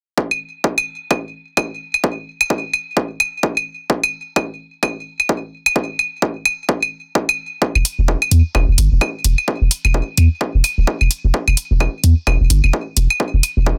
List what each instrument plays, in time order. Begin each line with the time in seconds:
0.18 kick
0.31 claves
0.64 kick
0.78 claves
1.11 kick, claves
1.57 kick, claves
1.94 claves
2.04 kick
2.41 claves
2.50 kick
2.73 claves
2.97 kick
3.20 claves
3.43 kick
3.57 claves
3.90 kick
4.04 claves
4.36 kick, claves
4.83 kick, claves
5.20 claves
5.29 kick
5.66 claves
5.76 kick
5.99 claves
6.22 kick
6.45 claves
6.69 kick
6.83 claves
7.15 kick
7.29 claves
7.62 kick
7.75 sub bass E1, claves
7.85 open hi-hat
7.99 sub bass E1
8.08 kick
8.22 claves
8.31 sub bass E2, open hi-hat
8.55 sub bass E1, kick, claves
8.68 sub bass E1
8.78 sub bass G1, open hi-hat
8.92 sub bass E1
9.01 kick, claves
9.24 sub bass E1, open hi-hat
9.38 claves
9.48 kick
9.61 sub bass E1
9.71 open hi-hat
9.85 sub bass E1, claves
9.94 kick
10.18 sub bass E2, open hi-hat, claves
10.41 kick
10.55 sub bass E1
10.64 open hi-hat, claves
10.78 sub bass D1
10.87 kick
11.01 sub bass E1, claves
11.11 open hi-hat
11.24 sub bass E1
11.34 kick
11.48 sub bass E1, claves
11.57 open hi-hat
11.71 sub bass E1
11.80 kick, claves
12.04 sub bass E2, open hi-hat
12.27 sub bass E1, kick, claves
12.41 sub bass E1
12.50 sub bass G1, open hi-hat
12.64 sub bass E1, claves
12.73 kick
12.97 sub bass E1, open hi-hat
13.10 claves
13.20 kick
13.34 sub bass E1
13.43 open hi-hat, claves
13.57 sub bass E1
13.66 kick